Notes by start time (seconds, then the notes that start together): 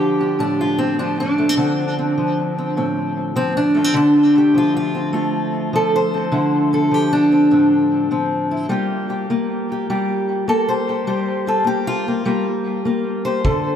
Already playing: D3 F3 D4 G4
0.21 D4
0.39 A2 D4
0.61 F4
0.78 C4
0.99 F3 D4
1.20 D4
1.38 A3
1.49 C4
1.57 D3 C4
1.99 C4
2.18 F3
2.58 C4
2.77 A2 C4
3.36 F3 C4
3.57 D4
3.75 A3 F4
3.84 C4
3.94 D3 D4
4.17 F4
4.35 A3 G4
4.54 F3 F4
4.77 F4
4.95 C4
5.13 A3 F4
5.73 F3 A4
5.96 C5
6.14 C4
6.32 D3 E4
6.73 E4 A4
6.91 F3 G4
7.13 D4
7.32 C4
7.51 A2 C4
8.11 F3 C4
8.51 E4
8.69 G3 A#3 F4 G4
9.10 G4
9.30 A#3 F4
9.72 G4
9.90 G3 G4
10.48 A#3 A4
10.69 C5
10.89 G4
11.07 G3 G4
11.47 F4 A4
11.64 A#3 G4
11.87 F4
12.08 A#3
12.25 G3 A#3
12.85 A#3 F4
13.25 G4 C5
13.45 D3 A4, kick